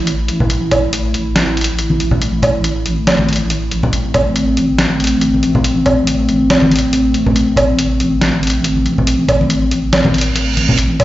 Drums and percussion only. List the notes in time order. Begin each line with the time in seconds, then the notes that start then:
0.07 closed hi-hat
0.28 closed hi-hat
0.40 low conga
0.50 closed hi-hat
0.71 closed hi-hat, low conga, low woodblock
0.93 closed hi-hat
1.14 closed hi-hat
1.36 snare, closed hi-hat
1.57 closed hi-hat
1.61 closed hi-hat
1.64 closed hi-hat
1.79 closed hi-hat
1.90 high conga
2.00 closed hi-hat
2.11 low conga
2.22 closed hi-hat
2.42 closed hi-hat, low conga, low woodblock
2.64 closed hi-hat
2.86 closed hi-hat
3.07 snare, closed hi-hat, low woodblock
3.19 high conga
3.29 closed hi-hat, high conga
3.33 closed hi-hat
3.36 closed hi-hat
3.50 closed hi-hat
3.71 closed hi-hat
3.83 low conga
3.93 closed hi-hat
4.14 closed hi-hat, low conga, low woodblock
4.36 closed hi-hat
4.57 closed hi-hat
4.79 snare, closed hi-hat
5.00 closed hi-hat
5.04 closed hi-hat
5.07 closed hi-hat
5.21 closed hi-hat
5.34 high conga
5.43 closed hi-hat
5.55 low conga
5.64 closed hi-hat
5.86 closed hi-hat, low conga, low woodblock
6.07 closed hi-hat
6.29 closed hi-hat
6.50 snare, closed hi-hat, low woodblock
6.62 high conga
6.71 closed hi-hat, high conga
6.76 closed hi-hat
6.79 closed hi-hat
6.93 closed hi-hat
7.14 closed hi-hat
7.26 low conga
7.36 closed hi-hat
7.56 closed hi-hat, low conga, low woodblock
7.79 closed hi-hat
8.00 closed hi-hat
8.21 snare, closed hi-hat
8.43 closed hi-hat
8.47 closed hi-hat
8.50 closed hi-hat
8.64 closed hi-hat
8.76 high conga
8.86 closed hi-hat
8.98 low conga
9.07 closed hi-hat
9.28 closed hi-hat, low conga, low woodblock
9.41 high conga
9.50 closed hi-hat
9.71 closed hi-hat
9.93 snare, closed hi-hat, low woodblock
10.05 high conga, low conga
10.14 closed hi-hat, high conga
10.18 closed hi-hat
10.21 closed hi-hat
10.36 closed hi-hat
10.57 closed hi-hat, high conga
10.69 low conga
10.78 closed hi-hat
11.00 closed hi-hat, low conga, low woodblock